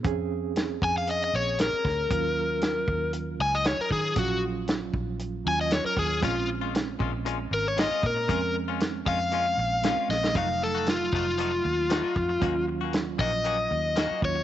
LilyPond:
<<
  \new Staff \with { instrumentName = "Overdriven electric guitar" } { \time 4/4 \key bes \minor \tempo 4 = 116 r4. aes''16 f''16 ees''16 ees''16 des''8 bes'4~ | bes'2 r8 aes''16 ees''16 des''16 bes'16 aes'8 | ges'8 r2 aes''16 ees''16 des''16 bes'16 aes'8 | f'8 r2 bes'16 des''16 ees''8 bes'8~ |
bes'8 r4 f''2 ees''8 | f''8 a'8 f'8 f'2~ f'8~ | f'8 r4 ees''2 des''8 | }
  \new Staff \with { instrumentName = "Clean electric guitar" } { \time 4/4 \key bes \minor r1 | r1 | r1 | <bes, aes des' f'>16 r8 <aes des' f'>16 r8 <bes, aes des' f'>16 r16 <bes, aes des' f'>16 r8. <bes, aes des' f'>16 <aes des' f'>16 r8 |
<bes, aes des' f'>16 r8 <aes des' f'>16 r8 <bes, aes des' f'>16 r16 <bes, aes des' f'>16 r8. <bes, aes des' f'>16 <aes des' f'>16 r8 | <f a ees' ges'>16 r8 <a ees' ges'>16 r8 <f a ees' ges'>16 r16 <f a ees' ges'>16 r8. <f a ees' ges'>16 <a ees' ges'>16 r8 | <ees bes des' ges'>16 r8 <bes des' ges'>16 r8 <ees bes des' ges'>16 r16 <ees bes des' ges'>16 r8. <ees bes des' ges'>16 <bes des' ges'>16 r8 | }
  \new Staff \with { instrumentName = "Reed electric piano" } { \time 4/4 \key bes \minor <c' des' aes'>1 | <ges des' f'>1 | <ges des' f'>2~ <ges des' f'>8 <ges des' f'>4. | <aes c' des'>1 |
<aes c' des'>2. <aes c' des'>4 | <ges a ees'>1 | <ges des' f'>2.~ <ges des' f'>8 <ges des' f'>8 | }
  \new Staff \with { instrumentName = "Fingered electric bass" } { \clef bass \time 4/4 \key bes \minor f,4. f,4 bes,,8. r16 d,8 | ees,4. ees,4 des,8. r16 ees8 | bes,,4. bes,,4 ees,8. r16 ees,8 | bes,,4. bes,,4 aes,,8. r16 bes,8 |
f,4. f,4 bes,,8. r16 bes,,8 | f,,4. f,,4 ees,8. r16 f,8 | ees,4. bes,,4 ees,8. r16 ees,8 | }
  \new DrumStaff \with { instrumentName = "Drums" } \drummode { \time 4/4 <hh bd>4 <hh sn>8 bd8 hh4 <hh sn>8 <bd sn>8 | <hh bd>4 <hh sn>8 bd8 hh4 <hh sn>8 bd8 | <hh bd>4 <hh sn>8 bd8 hh4 <hh sn>8 bd8 | <hh bd>4 <hh sn>8 bd8 hh4 <hh sn>8 bd8 |
<hh bd>4 <hh sn>8 bd8 hh4 <hh sn>8 sn16 sn16 | <hh bd>8 sn8 <hh sn>8 bd8 hh4 <hh sn>8 bd8 | <hh bd>4 <hh sn>8 bd8 hh4 <hh sn>8 bd8 | }
>>